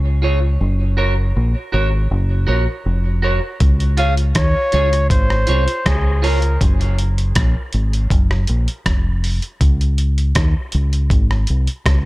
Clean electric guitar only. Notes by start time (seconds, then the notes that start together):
0.22 F4 G#4 C#5
0.97 F#4 A#4 C#5
1.72 F#4 A#4 C#5
2.47 F#4 A#4 C#5
3.22 F#4 A#4 C#5
3.97 F4 G#4 C#5
4.73 F4 G#4 C#5
5.47 F4 G#4 C#5
6.22 F4 G#4 C#5